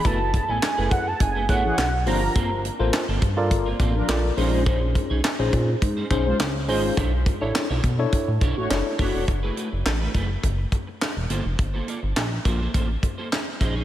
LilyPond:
<<
  \new Staff \with { instrumentName = "Analog synth lead" } { \time 4/4 \key g \lydian \tempo 4 = 104 a''8. gis''8. fis''16 a''16 gis''8 fis''4 bes''8~ | bes''8 r2. r8 | r1 | r1 |
r1 | r1 | }
  \new Staff \with { instrumentName = "Tine electric piano" } { \time 4/4 \key g \lydian <e' fis' a' b'>8 r8. <e' gis' a' b'>8 r8. <e' gis' a' cis''>8 r8 <f' g' bes' c''>8~ | <f' g' bes' c''>8 r16 <f' a' bes' c''>8 r8 <f' a' bes' d''>8 r8. <f' a' bes' d''>8 <cis' dis' gis' bis'>8~ | <cis' dis' gis' bis'>4 r16 <cis' dis' gis' bis'>8 r8. <cis' dis' gis' bis'>8 r8 <cis' dis' gis' bis'>8 | r8. <d' e' a' cis''>8 r8 <d' e' a' cis''>8 r8. <d' e' a' cis''>8 r8 |
r1 | r1 | }
  \new Staff \with { instrumentName = "Analog polysynth" } { \time 4/4 \key g \lydian r2 r8. <e cis' gis'>16 r8 <f d' bes'>8 | r2 r8. <f d' bes'>16 r8 <gis eis' bis'>8 | r2 r8. <gis eis' bis'>16 r8 <gis eis' bis'>8 | r2 r8. <a fis' cis''>16 r8 <a fis' cis''>8 |
r1 | r1 | }
  \new Staff \with { instrumentName = "Clean electric guitar" } { \time 4/4 \key g \lydian <a b e' gis'>16 r8 <a b e' a'>16 r16 <a b e' gis'>16 r8. <a b e' gis'>16 <a b e' gis'>16 r8. <bes c' f' a'>16 r16 | <bes c' f' a'>16 r8 <bes c' f' a'>16 r16 <bes c' f' a'>16 r8. <bes c' f' bes'>16 <bes c' f' a'>16 r8. <cis' dis' gis' bis'>16 <cis' dis' gis' cis''>16 | <cis' dis' gis' bis'>16 r8 <cis' dis' gis' cis''>16 r16 <cis' dis' gis' bis'>16 r8. <cis' dis' gis' bis'>16 <cis' dis' gis' bis'>16 r8. <cis' dis' gis' bis'>16 r16 | <d' e' a' cis''>16 r8 <d' e' a' cis''>16 r16 <d' e' a' cis''>16 r4 <d' e' a' cis''>16 r8. <d' e' a' cis''>16 <d' e' a' d''>16 |
r16 <a e' gis' b'>16 <a e' gis' b'>16 r8 <a e' gis' b'>16 <a e' gis' b'>16 r4. r16 <bes f' a' c''>16 r16 | r16 <bes f' a' c''>16 <bes f' a' d''>16 r8. <bes f' a' c''>16 <bes f' a' c''>16 <bes f' a' c''>16 r8 <bes f' a' c''>16 r8 <cis' dis' gis' bis'>16 <cis' dis' gis' cis''>16 | }
  \new Staff \with { instrumentName = "Analog synth bass" } { \clef bass \time 4/4 \key g \lydian fis,,8. a,,16 r16 fis,,16 fis,8 fis,,8 a,,8 b,,8 g,,8 | g,,8. a,,16 r16 g,,16 g,8 g,,8 a,,8 bes,,8 ais,,8~ | ais,,8. b,,16 r16 ais,,16 ais,8 gis,8 b,,8 cis,8 gis,,8 | b,,8. a,,16 r16 b,,16 b,8 r16 a,16 b,,16 a,,16 fis,,16 r16 fis,,16 e,,16 |
fis,,8 r16 fis,,16 a,,8 fis,,8 fis,,8 r8. e,,16 g,,16 f,,16 | g,,8 r16 g,,16 bes,,8 bes,,8 a,,8 r4 ais,,8 | }
  \new DrumStaff \with { instrumentName = "Drums" } \drummode { \time 4/4 <hh bd>8 <hh bd>8 <hc hh sn>8 <hh bd>8 <hh bd>8 <hh bd>8 <hc hh sn>8 hho8 | <hh bd>8 hh8 <hc hh sn>8 <hh bd>8 <hh bd>8 <hh bd>8 <hc hh sn>8 hho8 | <hh bd>8 <hh bd>8 <hc hh sn>8 <hh bd>8 <hh bd>8 <hh bd>8 <hc hh sn>8 hho8 | <hh bd>8 <hh bd>8 <hc hh sn>8 <hh bd>8 <hh bd>8 <hh bd>8 <hc hh sn>8 <hho bd>8 |
<hh bd>8 hh8 <hc hh sn>8 <hh bd>8 <hh bd>8 <hh bd>8 <hc hh sn>8 hh8 | <hh bd>8 hh8 <hc hh sn>8 <hh bd>8 <hh bd>8 <hh bd>8 <hc hh sn>8 <hh bd>8 | }
>>